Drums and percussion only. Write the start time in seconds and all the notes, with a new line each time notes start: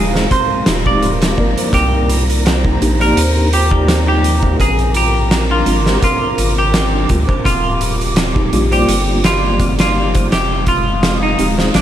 0.16 snare
0.31 kick, closed hi-hat
0.66 snare, closed hi-hat
0.86 kick
1.02 closed hi-hat
1.22 snare, closed hi-hat
1.38 kick
1.58 closed hi-hat
1.73 kick, closed hi-hat
2.10 closed hi-hat
2.30 closed hi-hat
2.46 snare, closed hi-hat
2.65 kick
2.82 closed hi-hat
3.01 closed hi-hat
3.17 closed hi-hat
3.53 closed hi-hat
3.71 kick
3.88 snare, closed hi-hat
4.24 closed hi-hat
4.43 kick
4.60 kick, closed hi-hat
4.79 closed hi-hat
4.94 closed hi-hat
5.31 snare, closed hi-hat
5.66 closed hi-hat
5.86 snare
6.02 kick, closed hi-hat
6.38 closed hi-hat
6.74 snare, closed hi-hat
7.09 kick, closed hi-hat
7.29 kick
7.45 kick, closed hi-hat
7.81 closed hi-hat
8.01 closed hi-hat
8.16 snare, closed hi-hat
8.36 kick
8.53 closed hi-hat
8.72 closed hi-hat
8.89 closed hi-hat
9.24 snare, closed hi-hat
9.60 kick, closed hi-hat
9.79 snare, closed hi-hat
10.15 kick, closed hi-hat
10.32 snare, closed hi-hat
10.67 kick, closed hi-hat
11.03 snare, closed hi-hat
11.39 closed hi-hat
11.59 snare
11.74 snare, closed hi-hat